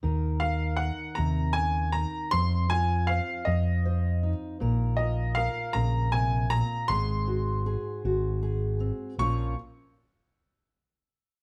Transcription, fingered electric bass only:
X:1
M:6/8
L:1/8
Q:3/8=52
K:Bbm
V:1 name="Fingered electric bass" clef=bass
E,,3 E,,3 | F,,3 F,,3 | B,,,3 B,,,3 | A,,,3 A,,,3 |
B,,, z4 z |]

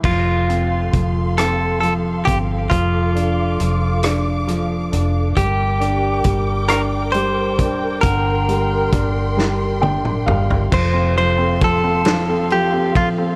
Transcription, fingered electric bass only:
X:1
M:6/8
L:1/8
Q:3/8=45
K:F
V:1 name="Fingered electric bass" clef=bass
F,,,2 F,,,3 G,,, | F,,,2 F,,,3 F,,, | G,,,2 G,,,3 F,,, | G,,,2 G,,,3 G,,, |
F,,,6 |]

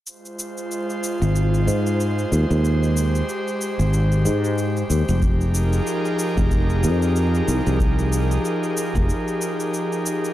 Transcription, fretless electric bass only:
X:1
M:4/4
L:1/16
Q:"Swing 16ths" 1/4=93
K:Ab
V:1 name="Fretless electric bass" clef=bass
z6 z A,,,3 A,,3 z E,, E,,- | E,,3 z4 A,,,3 A,,3 z E,, F,,,- | F,,,3 z4 F,,,3 F,,3 z C,, C,,- | C,,3 z4 F,,, z8 |]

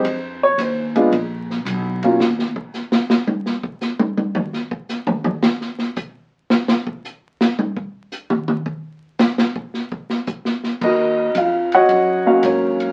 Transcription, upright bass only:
X:1
M:4/4
L:1/8
Q:"Swing" 1/4=111
K:Ebm
V:1 name="Upright bass" clef=bass
F,,2 E,,2 B,,,2 C,,2 | E,, z6 z | z8 | z8 |
z8 | E,,2 F,,2 G,,2 A,,2 |]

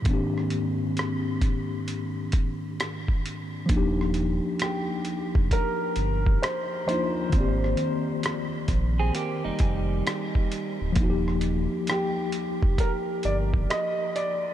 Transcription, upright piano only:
X:1
M:4/4
L:1/8
Q:"Swing 16ths" 1/4=66
K:Eb
V:1 name="Upright piano"
z8 | z2 G2 B2 c c- | c2 z6 | z2 G2 B d e d |]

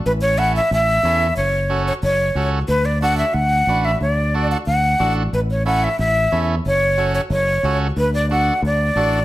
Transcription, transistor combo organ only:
X:1
M:4/4
L:1/8
Q:1/4=182
K:D
V:1 name="Transistor combo organ"
z2 [CEA] z3 [CEA] z | z2 [CFA] z3 [CFA] z | z2 [DFA] z3 [DFB] z | z2 [DFA] z3 [DFA] z |
z2 [CEA] z3 [CEA] z | z2 [CFA] z3 [CFA] z | z2 [DFA] z3 [DFA] z |]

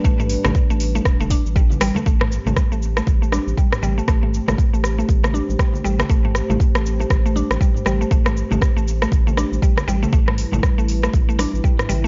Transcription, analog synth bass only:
X:1
M:4/4
L:1/16
Q:"Swing 16ths" 1/4=119
K:Am
V:1 name="Analog synth bass" clef=bass
A,,,2 z A,,, z A,,,2 z E,,,2 z A,,,2 z A,,, z | A,,,2 z A,,, z A,,,2 z A,,,2 z A,,, z2 A,,, z | A,,,2 z A,,, z A,,,2 z A,,,2 z A,,, z2 A,,, z | A,,,2 z A,,, z A,,,2 z A,,,2 z A,,, z2 A,,, z |
A,,,2 z A,,, z A,,,2 z A,,,2 z A,,, z2 A,,, z | A,,,2 z A,,, z A,,,2 z A,,,2 z A,,, z2 A,,, z |]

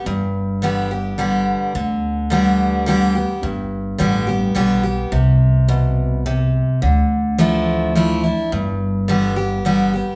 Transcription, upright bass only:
X:1
M:3/4
L:1/8
Q:1/4=106
K:Gmix
V:1 name="Upright bass" clef=bass
G,,,6 | D,,6 | G,,,2 A,,,2 B,,,2 | C,,6 |
D,,6 | G,,,6 |]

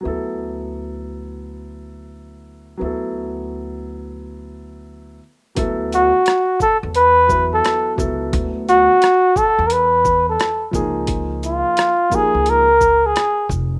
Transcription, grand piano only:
X:1
M:4/4
L:1/8
Q:"Swing 16ths" 1/4=87
K:D
V:1 name="Grand piano"
[F,B,EA]8 | [F,B,EA]6- [F,B,EA] z | [F,B,EA] z4 [F,B,EB]2 [F,B,EA]- | [F,B,EA]2 z4 z [^E,_B,^D^G]- |
[^E,_B,^D^G]2 z [E,B,D=G^G] z4 |]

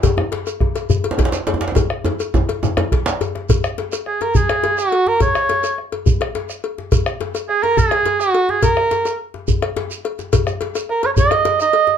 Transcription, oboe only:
X:1
M:12/8
L:1/8
Q:3/8=140
K:G#dor
V:1 name="Oboe"
z12 | z12 | z4 G A G3 F2 A | c4 z8 |
z4 G A G3 F2 G | A4 z8 | z4 A c d3 d3 |]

